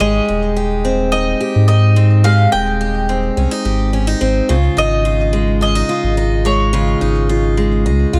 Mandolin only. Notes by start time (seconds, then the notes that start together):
0.00 D#5
1.12 D#5
1.68 D#5
2.24 F5
2.52 G5
4.78 D#5
5.62 D#5
6.46 C#5